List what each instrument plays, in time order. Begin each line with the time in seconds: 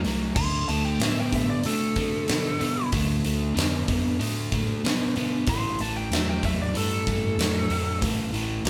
0.05 fingered electric bass C2, overdriven electric guitar A2 F#3, snare, open hi-hat
0.36 fingered electric bass D2, overdriven electric guitar D3 A3, lead electric guitar C6, kick, crash
0.68 fingered electric bass D2, overdriven electric guitar D3 A3, lead electric guitar A5, open hi-hat
0.85 lead electric guitar G5
0.99 fingered electric bass A2, overdriven electric guitar D3 B3, lead electric guitar E5, snare, open hi-hat
1.20 lead electric guitar G5
1.32 fingered electric bass A2, overdriven electric guitar D3 B3, lead electric guitar E5, kick, open hi-hat
1.50 lead electric guitar D5
1.64 fingered electric bass C3, overdriven electric guitar D3 A3, lead electric guitar A4, open hi-hat
1.95 fingered electric bass C3, overdriven electric guitar D3 A3, kick, open hi-hat
2.28 fingered electric bass B2, overdriven electric guitar D3 B3, snare, open hi-hat
2.60 fingered electric bass B2, overdriven electric guitar D3 B3, snare, open hi-hat
2.92 fingered electric bass D2, overdriven electric guitar D3 A3, kick, open hi-hat
3.25 fingered electric bass D2, overdriven electric guitar D3 A3, open hi-hat
3.55 fingered electric bass F2, overdriven electric guitar D3 B3, open hi-hat
3.59 snare
3.88 fingered electric bass F2, overdriven electric guitar D3 B3, kick, open hi-hat
4.19 fingered electric bass A2, overdriven electric guitar D3 A3, open hi-hat
4.52 fingered electric bass A2, overdriven electric guitar D3 A3, kick, open hi-hat
4.83 fingered electric bass B2, overdriven electric guitar D3 B3, snare, open hi-hat
5.16 fingered electric bass B2, overdriven electric guitar D3 B3, open hi-hat
5.47 fingered electric bass A1, overdriven electric guitar A2 E3, lead electric guitar C6, kick, open hi-hat
5.79 fingered electric bass A1, overdriven electric guitar A2 E3, lead electric guitar A5, open hi-hat
5.97 lead electric guitar G5
6.11 fingered electric bass E2, overdriven electric guitar A2 F#3, lead electric guitar E5, snare, open hi-hat
6.29 lead electric guitar G5
6.43 fingered electric bass E2, overdriven electric guitar A2 F#3, lead electric guitar E5, kick, open hi-hat
6.62 lead electric guitar D5
6.74 fingered electric bass G2, overdriven electric guitar A2 E3, lead electric guitar A4, open hi-hat
7.07 fingered electric bass G2, overdriven electric guitar A2 E3, kick, open hi-hat
7.38 fingered electric bass F2, overdriven electric guitar A2 F#3, snare, open hi-hat
7.70 fingered electric bass F2, overdriven electric guitar A2 F#3, open hi-hat
8.01 fingered electric bass A1, overdriven electric guitar A2 E3, kick, open hi-hat
8.33 fingered electric bass A1, overdriven electric guitar A2 E3, open hi-hat
8.64 fingered electric bass C2, overdriven electric guitar A2 F#3, open hi-hat